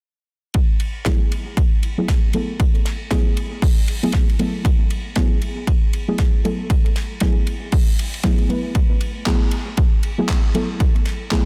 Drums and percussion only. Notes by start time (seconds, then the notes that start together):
0.54 kick, ride
0.80 ride
1.05 kick, snare, ride
1.32 ride
1.57 kick, ride
1.83 ride
2.08 kick, snare, ride
2.33 ride
2.60 kick, ride
2.75 ride
2.85 snare, ride
3.11 kick, snare, ride
3.37 ride
3.62 kick, open hi-hat
3.88 ride
4.03 ride
4.12 kick, snare, ride
4.29 ride
4.39 ride
4.65 kick, ride
4.90 ride
5.16 kick, snare, ride
5.42 ride
5.67 kick, ride
5.93 ride
6.18 kick, snare, ride
6.45 ride
6.70 kick, ride
6.86 ride
6.96 snare, ride
7.20 kick, snare, ride
7.47 ride
7.72 kick, open hi-hat
7.99 ride
8.14 ride
8.23 kick, snare, ride
8.38 ride
8.50 ride
8.75 kick, ride
9.01 ride
9.26 kick, snare, clap, ride
9.51 ride
9.77 kick, ride
10.03 ride
10.29 kick, snare, clap, ride
10.55 ride
10.80 kick, ride
10.95 ride
11.05 snare, ride
11.31 kick, snare, clap, ride